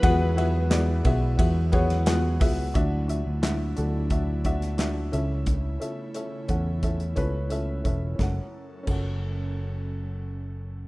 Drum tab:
CC |----------------|----------------|----------------|----x-----------|
RD |x-x-x-x-x-xxx-x-|----------------|----------------|----------------|
HH |--------------o-|x-x-x-x-x-xxx-x-|x-x-x-x-xxx-x-x-|----------------|
CP |----x-------x---|----x-------x---|----------------|----------------|
SD |----o------oo---|----o------oo---|----------------|o---------------|
BD |o-----o-o-o---o-|o-------o-o-----|o-----o-o-o---o-|o---o-----------|